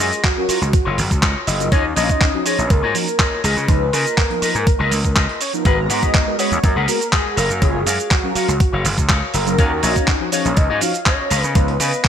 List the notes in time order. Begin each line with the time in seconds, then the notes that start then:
Already playing: G#4
0.00 F#2 F4 F#4 A#4 D#5, shaker
0.12 closed hi-hat, shaker
0.24 F#4, kick, clap, closed hi-hat, shaker
0.37 F#3 C#4 F4 A#4
0.48 F#3 C#4 F4 F#4 A#4 C#5, muted slap bass stroke, open hi-hat, shaker
0.62 C#2, closed hi-hat, shaker
0.73 kick, closed hi-hat, shaker
0.85 F#1 F4 F#4 A#4 C#5
0.98 F#1, open hi-hat, shaker
1.10 C#2, muted clean electric guitar stroke, kick, closed hi-hat, shaker
1.22 C#2 F4 F#4 A#4 C#5, kick, clap, closed hi-hat, shaker
1.47 F#1 D#5, open hi-hat, shaker
1.59 F#3 C#4 F4 A#4, closed hi-hat, shaker
1.71 D#2 C#4 D#4 F4 F#4 C#5 D#5, kick, closed hi-hat, shaker
1.96 A#1 F4 F#4 C#5 D#5, open hi-hat, shaker
2.03 F5
2.09 D#5, kick, shaker
2.21 kick, clap, closed hi-hat, shaker
2.34 F3 C#4 D#4 F#4
2.45 F3 C#4 D#4 F4 F#4 G#4 C#5 D#5, open hi-hat, shaker
2.59 A#1, closed hi-hat, shaker
2.70 C#2 A#4, kick, closed hi-hat, shaker
2.82 G#2 F4 F#4 C#5 D#5
2.94 F3 C#4 D#4 F#4 A#4, open hi-hat, shaker
3.07 muted clean electric guitar stroke, closed hi-hat, shaker
3.19 F4 F#4 C#5 D#5, kick, clap, closed hi-hat, shaker
3.43 C#2 F4 G#4 A#4 B4 D#5, open hi-hat, shaker
3.57 C#3, closed hi-hat, shaker
3.68 C#2 F3 B3 D#4 B4, kick, closed hi-hat, shaker
3.92 C#3 F4 A#4 B4 D#5, open hi-hat, shaker
4.06 closed hi-hat, shaker
4.18 kick, clap, closed hi-hat, shaker
4.30 F3 B3 D#4 A#4, closed hi-hat
4.41 F3 B3 D#4 F4 A#4 B4 D#5, muted slap bass stroke, open hi-hat, shaker
4.55 G#2, closed hi-hat, shaker
4.67 kick, closed hi-hat, shaker
4.79 C#2 F4 A#4 B4 D#5
4.91 C#2, open hi-hat, shaker
5.04 muted clean electric guitar stroke, kick, shaker
5.15 F4 A#4 B4 D#5, kick, clap, closed hi-hat, shaker
5.29 closed hi-hat
5.41 C#5, open hi-hat, shaker
5.53 F3 B3 D#4 A#4, closed hi-hat, shaker
5.64 G#1 G#3 B3 F#4 G#4 A#4 B4 F#5 A#5, kick, closed hi-hat, shaker
5.89 G#2 G#4 A#4 B4 D#5 F#5, open hi-hat, shaker
6.03 kick, closed hi-hat, shaker
6.14 kick, clap, closed hi-hat, shaker
6.27 G#3 B3 F#4 A#4
6.38 G#3 B3 F#4 G#4 A#4 B4 C#5 F#5, open hi-hat, shaker
6.52 D#2, closed hi-hat, shaker
6.64 F#2 A#4, kick, closed hi-hat, shaker
6.75 C#2 G#4 A#4 B4 F#5
6.88 G#3 B3 F#4 A#4, open hi-hat, shaker
7.00 muted clean electric guitar stroke, closed hi-hat, shaker
7.12 G#4 A#4 B4 F#5, kick, clap, closed hi-hat, shaker
7.36 F#1 F#4 A#4 C#5 F5, open hi-hat, shaker
7.50 F#2, closed hi-hat, shaker
7.61 F#1 F#3 C#4 F4 G#4 C#5, kick, closed hi-hat, shaker
7.86 F#2 F#4 A#4 C#5 F5, open hi-hat, shaker
7.99 closed hi-hat, shaker
8.11 F#4, kick, clap, closed hi-hat, shaker
8.23 F#3 C#4 F4 A#4
8.35 F#3 C#4 F4 F#4 A#4 C#5 F5, muted slap bass stroke, open hi-hat, shaker
8.48 C#2, closed hi-hat, shaker
8.60 kick, closed hi-hat, shaker
8.73 F#1 F#4 A#4 C#5 F5
8.85 F#1, open hi-hat, shaker
8.97 C#2, muted clean electric guitar stroke, kick, closed hi-hat, shaker
9.09 C#2 F#4 A#4 C#5 F5, kick, clap, closed hi-hat, shaker
9.34 F#1 A#4, open hi-hat, shaker
9.46 F#3 C#4 F4 A#4, closed hi-hat, shaker
9.58 D#2 C#4 D#4 F#4 C#5 D#5 F5, kick, closed hi-hat, shaker
9.83 A#1 F#4 C#5 D#5 F5, open hi-hat, shaker
9.96 kick, closed hi-hat, shaker
10.07 kick, clap, closed hi-hat, shaker
10.20 F3 C#4 D#4 F#4
10.32 F3 C#4 D#4 F#4 G#4 C#5 D#5 F5, open hi-hat, shaker
10.45 A#1, closed hi-hat, shaker
10.57 C#2 D#5, kick, closed hi-hat, shaker
10.69 G#2 F#4 C#5 D#5 F5
10.81 F3 C#4 D#4 F#4 F5, open hi-hat, shaker
10.94 muted clean electric guitar stroke, closed hi-hat, shaker
11.05 F#4 C#5 D#5 F5, kick, clap, closed hi-hat, shaker
11.30 C#2 A#4 B4 D#5 F5, open hi-hat, shaker
11.44 C#3, closed hi-hat, shaker
11.55 C#2 F3 B3 D#4 B4, kick, closed hi-hat, shaker
11.68 closed hi-hat
11.79 C#3 A#4 B4 D#5 F5, open hi-hat, shaker
11.93 closed hi-hat, shaker
12.04 kick, clap, closed hi-hat, shaker